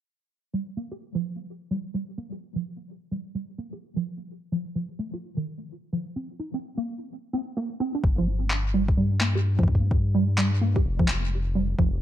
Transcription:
0.54 G3
0.77 A#3
0.92 G4
1.15 F3
1.38 G3
1.71 G3
1.94 G3
2.18 A#3
2.32 G4
2.56 F3
2.79 G3
3.11 G3
3.35 G3
3.58 A#3
3.73 G4
3.96 F3
4.20 G3
4.52 F3
4.75 F3
4.99 A3
5.13 F4
5.37 D#3
5.60 F3
5.93 F3
6.16 C4
6.39 D#4
6.54 C4
6.77 A#3
7.01 C4
7.33 C4
7.57 A#3
7.80 C4
7.95 D4
8.04 G1, kick
8.18 F3
8.27 G4
8.42 G3
8.51 clap
8.74 G3
8.88 kick
8.97 G2 G3
9.21 A#3, clap
9.35 G4
9.59 F3, kick
9.63 kick
9.68 G4, kick
9.75 kick
9.82 G3
9.91 kick
10.14 G3
10.38 G3, clap
10.61 A#3
10.76 G4, kick
10.85 F1
10.99 F3, kick
11.08 G4, clap
11.23 G3
11.55 G3
11.79 F1 F3, kick

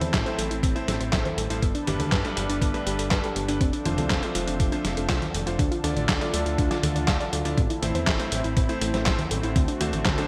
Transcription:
Already playing: A2 A3 C4 E4 A4 C5
0.01 E2 C5, closed hi-hat, high conga
0.13 A1 E5, kick, snare, clap, closed hi-hat
0.26 A2 A3 C4 E4 C5, closed hi-hat
0.38 A1 A4, closed hi-hat
0.50 A1 E4, closed hi-hat
0.63 A1 C4, kick, closed hi-hat
0.75 A2 A3 C4 E4 C5, closed hi-hat
0.88 A1 A4, snare, closed hi-hat
1.00 A1 C5, closed hi-hat
1.13 A1 A2 A3 C4 E4 C5 E5, kick, snare, clap, closed hi-hat
1.25 C5, closed hi-hat, high conga
1.37 A1 A4, closed hi-hat
1.50 A1 G2 A3 C4 E4 C5, closed hi-hat
1.62 G1 G3 B3 D4 B4, kick, closed hi-hat
1.75 D4, closed hi-hat
1.87 G1 G2 A3 D4 G4 B4, closed hi-hat, high conga
2.00 D2 A4, closed hi-hat, high conga
2.12 G1 B4, kick, snare, clap, closed hi-hat
2.24 G2 A3 D4 G4 A4 B4, closed hi-hat
2.37 G1 G4, closed hi-hat
2.49 G1 D4, closed hi-hat
2.62 G1 B3, kick, closed hi-hat
2.74 G2 A3 D4 G4 B4, closed hi-hat
2.86 G1 G4, closed hi-hat
2.99 G1 A4, closed hi-hat
3.11 G1 G2 A3 D4 G4 B4, kick, snare, clap, closed hi-hat
3.24 A4, closed hi-hat
3.36 G1 G4, closed hi-hat
3.48 G1 A3 D4 G4 B4, closed hi-hat
3.60 F1 F3 C4, kick, closed hi-hat
3.73 D4, closed hi-hat
3.85 F1 A3 D4 F4 C5, closed hi-hat, high conga
3.98 C2 A4, closed hi-hat, high conga
4.10 F1 C5, kick, snare, clap, closed hi-hat
4.23 A3 D4 F4 A4 C5, closed hi-hat
4.35 F1 F4, closed hi-hat
4.47 F1 D4, closed hi-hat
4.60 F1 C4, kick, closed hi-hat
4.72 A3 D4 F4 C5, closed hi-hat
4.85 F1 D4, snare, closed hi-hat
4.97 F1 A4, closed hi-hat
5.09 C2 A3 D4 F4 C5, kick, snare, clap, closed hi-hat
5.22 F4, closed hi-hat, high conga
5.34 F1 D5, closed hi-hat
5.46 F1 D3 A3 D4 F4 C5, closed hi-hat
5.59 D2 D3 D4 F4 A4, kick, closed hi-hat
5.71 F4, closed hi-hat
5.84 D2 D3 A3 D4 F4 A4 D5, closed hi-hat, high conga
5.96 A1 D5, closed hi-hat
6.08 D2 F5, kick, snare, clap, closed hi-hat
6.21 D3 A3 D4 F4 D5, closed hi-hat
6.33 D2 A4, closed hi-hat
6.46 D2 F4, closed hi-hat
6.58 D2 D4, kick, closed hi-hat
6.71 D3 A3 D4 F4 D5, snare, closed hi-hat
6.83 D2 A4, closed hi-hat, high conga
6.95 D2 D5, closed hi-hat
7.08 D2 D3 A3 D4 F4 D5 F5, kick, snare, clap, closed hi-hat
7.20 D5, closed hi-hat
7.33 D2 A4, closed hi-hat
7.45 D2 A2 A3 D4 F4 D5, closed hi-hat
7.58 A1 A3 C4 E4, kick, closed hi-hat
7.70 E4, closed hi-hat
7.82 A1 A2 A3 C4 E4 A4 C5, closed hi-hat, high conga
7.95 E2 C5, closed hi-hat
8.07 A1 E5, kick, snare, clap, closed hi-hat
8.19 A2 A3 C4 E4 C5, closed hi-hat
8.32 A1 A4, closed hi-hat
8.44 A1 E4, closed hi-hat
8.57 A1 C4, kick, closed hi-hat
8.69 A2 A3 C4 E4 C5, closed hi-hat
8.81 A1 A4, closed hi-hat
8.94 A1 C5, snare, closed hi-hat
9.06 A1 A2 A3 C4 E4 C5 E5, kick, snare, clap, closed hi-hat
9.19 C5, closed hi-hat, high conga
9.31 A1 A4, closed hi-hat
9.43 A1 D3 A3 C4 E4 C5, closed hi-hat
9.56 D2 D3 C4 F#4, kick, closed hi-hat
9.68 D4, closed hi-hat
9.80 D2 D3 A3 D4 F#4 C5, closed hi-hat, high conga
9.93 A1 A4, closed hi-hat
10.05 D2 C5, kick, snare, clap, closed hi-hat
10.18 D3 A3 D4 F#4 A4 C5, closed hi-hat

